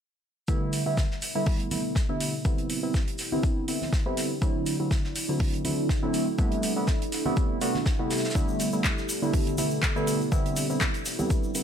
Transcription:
0.48 analog polysynth D3 G3 A3 B3 E4, ambient pad B3 E4 G4 A4 D5, kick, shaker
0.73 open hi-hat, shaker
0.86 analog polysynth D3 G3 A3 B3 E4
0.97 kick, snare, shaker
1.11 snare
1.22 open hi-hat, shaker
1.35 analog polysynth D3 G3 A3 B3 E4
1.46 kick, open hi-hat, high conga
1.60 closed hi-hat
1.71 analog polysynth D3 G3 A3 B3 E4, open hi-hat, high conga, shaker
1.95 kick, snare, shaker
2.09 analog polysynth D3 G3 A3 B3 E4
2.20 open hi-hat, shaker
2.45 analog polysynth D3 G3 B3 C4 E4, ambient pad D4 E4 B4 D5, kick, shaker
2.58 closed hi-hat
2.70 open hi-hat, shaker
2.83 analog polysynth D3 G3 B3 C4 E4
2.94 kick, snare, shaker
3.08 closed hi-hat
3.18 snare, open hi-hat, shaker
3.32 analog polysynth D3 G3 B3 C4 E4, high conga
3.43 kick, shaker
3.68 analog polysynth D3 G3 B3 C4 E4, open hi-hat, shaker
3.82 snare, high conga
3.93 kick, snare, shaker
4.06 analog polysynth D3 G3 B3 C4 E4
4.17 snare, open hi-hat, shaker
4.42 analog polysynth D3 F#3 A3 C4 E4, ambient pad E4 F#4 A4, kick, shaker
4.66 open hi-hat, shaker
4.80 analog polysynth D3 F#3 A3 C4 E4
4.91 kick, snare, shaker
5.04 snare
5.16 open hi-hat, shaker
5.29 analog polysynth D3 F#3 A3 C4 E4
5.40 kick, open hi-hat, high conga
5.54 closed hi-hat
5.65 analog polysynth D3 F#3 A3 C4 E4, open hi-hat, high conga, shaker
5.89 kick, snare, shaker
6.03 analog polysynth D3 F#3 A3 C4 E4
6.14 open hi-hat, shaker
6.38 analog polysynth C3 G3 A3 B3 E4, ambient pad G4 A4 E5, kick, shaker
6.52 closed hi-hat
6.63 open hi-hat, shaker
6.76 analog polysynth C3 G3 A3 B3 E4
6.87 kick, snare, shaker
7.02 closed hi-hat
7.12 snare, open hi-hat, shaker
7.25 analog polysynth C3 G3 A3 B3 E4, high conga
7.37 kick, shaker
7.61 analog polysynth C3 G3 A3 B3 F#4, open hi-hat, shaker
7.74 snare, high conga
7.86 kick, snare, shaker
7.99 analog polysynth C3 G3 A3 B3 E4
8.10 snare, open hi-hat, shaker
8.17 snare, shaker
8.24 snare, shaker
8.30 snare, shaker
8.35 analog polysynth D3 G3 A3 B3 E4, ambient pad B3 A4 D5, kick, shaker
8.48 shaker
8.59 open hi-hat, shaker
8.72 analog polysynth D3 G3 A3 B3 E4, shaker
8.84 kick, snare, clap, shaker
8.98 snare, shaker
9.09 open hi-hat, shaker
9.22 analog polysynth D3 G3 A3 B3 E4, shaker
9.33 kick, open hi-hat, high conga, shaker
9.47 closed hi-hat, shaker
9.58 analog polysynth D3 G3 A3 B3 E4, open hi-hat, high conga, shaker
9.71 shaker
9.82 kick, snare, clap, shaker
9.96 analog polysynth D3 G3 A3 B3 E4, shaker
10.07 open hi-hat, shaker
10.21 shaker
10.32 analog polysynth D3 G3 B3 C4 E4, ambient pad D4 G4 B4 D5, kick, shaker
10.46 closed hi-hat, shaker
10.56 open hi-hat, shaker
10.70 analog polysynth D3 G3 B3 C4 E4, shaker
10.81 kick, snare, clap, shaker
10.94 closed hi-hat, shaker
11.05 snare, open hi-hat, shaker
11.19 analog polysynth D3 G3 B3 C4 E4, high conga, shaker
11.30 kick, shaker
11.43 shaker
11.55 analog polysynth D3 G3 B3 C4 E4, open hi-hat, shaker

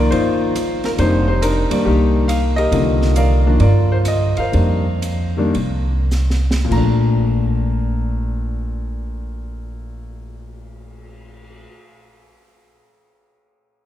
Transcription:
Already playing: grand piano D#3 F3 A#3 F4 A#4
0.00 grand piano D5
0.11 upright bass G1, grand piano D#4 F4 C5, ride
0.56 cross-stick, hi-hat pedal, ride
0.84 grand piano A#4, snare, ride
0.97 upright bass F1, grand piano D#3 G3 A#3 D4 G4 C5, ride
1.01 grand piano D#4
1.28 grand piano C5
1.42 grand piano D4 D#4 A#4, hi-hat pedal, ride
1.70 grand piano D#3 G3 A#3 D5, muted upright bass stroke, ride
1.85 upright bass C2, grand piano A#3 D#4 G4
2.28 grand piano F5, cross-stick, hi-hat pedal, ride
2.56 grand piano G4 A#4 D#5, ride
2.72 upright bass C2, grand piano D3 D#3 F3 A#3, ride
3.02 snare
3.16 grand piano A#4 D5 F5, hi-hat pedal, ride
3.46 grand piano D#3 F3 A#3 D4
3.60 upright bass G2, grand piano F4 A#4 D5, ride
3.92 grand piano C5
4.05 grand piano D#5, cross-stick, hi-hat pedal, ride
4.37 grand piano A#4 C5 F5, muted upright bass stroke, ride
4.52 upright bass F2, grand piano D#3 G3 A#3 D4, ride
5.02 hi-hat pedal, ride
5.37 grand piano D#3 G3 A#3 D4
5.55 upright bass C2, ride
6.11 snare, hi-hat pedal
6.30 snare
6.51 snare
6.65 grand piano A#2
6.69 upright bass A#1, grand piano F3 A3 A#5, kick, crash
6.77 grand piano D4
7.12 cymbal swell

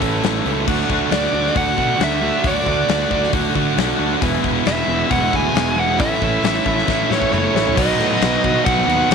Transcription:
Already playing: fingered electric bass A1, overdriven electric guitar A2 E3 A3 C#4 E4
0.01 distorted electric guitar A2 E3 A3 C#4 A4, kick, open hi-hat
0.23 fingered electric bass A1, overdriven electric guitar A2 E4, distorted electric guitar E3 A3 C#4 A4, snare, open hi-hat
0.45 fingered electric bass C#2, distorted electric guitar A3 C#4 A4, open hi-hat
0.67 fingered electric bass D2, distorted electric guitar D3 A3 D4 F#4, kick, crash
0.90 fingered electric bass D2, distorted electric guitar D3 A3 D4 F#4, kick
1.10 fingered electric bass D2, distorted electric guitar D3 A3 D4 F#4, lead electric guitar D5, snare, open hi-hat
1.33 fingered electric bass D2, distorted electric guitar D3 A3 D4 F#4
1.47 snare
1.55 fingered electric bass D2, distorted electric guitar D3 A3 D4 F#4, lead electric guitar F#5, kick, open hi-hat
1.77 fingered electric bass B2, distorted electric guitar D3 A3 D4 F#4, kick
1.99 fingered electric bass D2, distorted electric guitar D3 A3 D4 F#4, snare, open hi-hat
2.04 lead electric guitar E5
2.21 distorted electric guitar D3 A3 D4 F#4
2.44 fingered electric bass D2, distorted electric guitar D3 A3 D4 F#4, lead electric guitar D5, kick, open hi-hat
2.66 fingered electric bass D2, distorted electric guitar D3 A3 D4 F#4, kick
2.89 fingered electric bass D2, distorted electric guitar D3 A3 D4 F#4, snare, open hi-hat
3.11 fingered electric bass D2, distorted electric guitar D3 A3 D4 F#4, kick
3.23 snare
3.33 fingered electric bass D2, distorted electric guitar D3 A3 D4 F#4, kick, open hi-hat
3.55 distorted electric guitar D3 A3 D4 F#4, fingered electric bass D3, kick
3.77 fingered electric bass B1, distorted electric guitar D3 A3 D4 F#4, snare, open hi-hat
3.99 fingered electric bass D2, distorted electric guitar D3 A3 D4 F#4
4.21 fingered electric bass E1, distorted electric guitar E2 B2 E3 G#3 B3 E4, twelve-string acoustic guitar G#4, kick, open hi-hat
4.44 fingered electric bass E1, distorted electric guitar E2 B2 E3 G#3 B3 E4, kick
4.65 fingered electric bass E1, distorted electric guitar E2 B2 E3 G#3 B3 E4, twelve-string acoustic guitar G#4, lead electric guitar E5, snare, open hi-hat
4.87 fingered electric bass E1, distorted electric guitar E2 B2 E3 G#3 B3 E4, twelve-string acoustic guitar G#4
5.10 fingered electric bass E1, distorted electric guitar E2 B2 E3 G#3 B3 E4, twelve-string acoustic guitar G#4, lead electric guitar F#5, kick, open hi-hat
5.32 fingered electric bass D2, distorted electric guitar E2 B2 E3 G#3 B3 E4, twelve-string acoustic guitar G#4, kick
5.36 lead electric guitar G#5
5.54 fingered electric bass E1, distorted electric guitar E2 B2 E3 G#3 B3 E4, twelve-string acoustic guitar G#4, snare, open hi-hat
5.76 distorted electric guitar E2 B2 E3 G#3 B3 E4, lead electric guitar F#5
5.98 fingered electric bass A1, distorted electric guitar A2 E3 A3 C#4 E4, twelve-string acoustic guitar A4, lead electric guitar E5, kick, open hi-hat
6.21 fingered electric bass A1, distorted electric guitar A2 E3 A3 C#4 E4, kick
6.43 fingered electric bass A1, distorted electric guitar A2 E3 A3 C#4 E4, twelve-string acoustic guitar A4, snare, open hi-hat
6.65 fingered electric bass A1, distorted electric guitar A2 E3 A3 C#4 E4, twelve-string acoustic guitar A4, kick
6.79 snare
6.87 fingered electric bass A1, distorted electric guitar A2 E3 A3 C#4 E4, twelve-string acoustic guitar A4, kick, snare
7.10 distorted electric guitar A2 E3 A3 C#4 E4, fingered electric bass A2, twelve-string acoustic guitar A4, lead electric guitar C#5, snare
7.22 kick
7.31 fingered electric bass F#1, distorted electric guitar A2 E3 A3 C#4 E4, twelve-string acoustic guitar A4, lead electric guitar C#5, mid tom
7.54 fingered electric bass A1, distorted electric guitar A2 E3 A3 C#4 E4, snare
7.67 floor tom
7.74 fingered electric bass B1, distorted electric guitar B2 D#3 F#3 B3 D#4 F#4, lead electric guitar D#5, kick, crash
7.79 twelve-string acoustic guitar B4
7.99 fingered electric bass A2, twelve-string acoustic guitar B3 D#4 B4, crash
8.21 fingered electric bass B1, twelve-string acoustic guitar F#3 B3 D#4 B4, snare, crash
8.43 fingered electric bass B2, overdriven electric guitar B2 F#3 B3 D#4 F#4, kick, crash
8.65 fingered electric bass B1, twelve-string acoustic guitar B2 F#3 B3 D#4 B4, lead electric guitar F#5, kick, crash
8.87 fingered electric bass D#2, distorted electric guitar B2 D#3 F#3 B3 D#4 F#4, crash
9.09 fingered electric bass A1, distorted electric guitar B2 D#3 F#3 B3 D#4, lead electric guitar F#5, crash

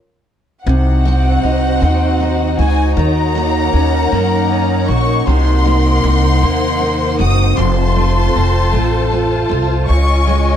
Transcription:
0.64 upright bass C2, steel-string acoustic guitar C3, string section D#4 F#4 C5 F#5, violin section F#5
1.05 steel-string acoustic guitar C4
1.43 upright bass C2, steel-string acoustic guitar D#4
1.81 upright bass D#2, steel-string acoustic guitar C4
2.20 steel-string acoustic guitar D#4
2.58 upright bass C#2, steel-string acoustic guitar F#4, violin section G#5
2.97 upright bass D#2, steel-string acoustic guitar D#3, string section A#4 C#5 F#5, violin section A#5
3.35 steel-string acoustic guitar A#3
3.73 upright bass D#2, steel-string acoustic guitar C#4
4.12 upright bass F#2, steel-string acoustic guitar A#3
4.50 steel-string acoustic guitar C#4
4.88 upright bass A#1, steel-string acoustic guitar F#4, violin section C#6
5.27 upright bass C2, steel-string acoustic guitar C3, string section A#4 C5 F#5, violin section C6
5.65 steel-string acoustic guitar A#3
6.03 upright bass C2, steel-string acoustic guitar C4
6.42 upright bass D#2, steel-string acoustic guitar A#3
6.80 steel-string acoustic guitar C4
7.19 upright bass F#1, steel-string acoustic guitar F#4, violin section D#6
7.57 upright bass F1, steel-string acoustic guitar F2, string section F4 A4 A5, violin section C6
7.96 steel-string acoustic guitar A3
8.36 upright bass F1, steel-string acoustic guitar C4
8.73 upright bass A1, steel-string acoustic guitar A3
9.12 steel-string acoustic guitar C4
9.49 upright bass C2, steel-string acoustic guitar F4
9.88 upright bass C#2, string section C#5 D#5 G#5, violin section C#6
10.27 steel-string acoustic guitar G#3

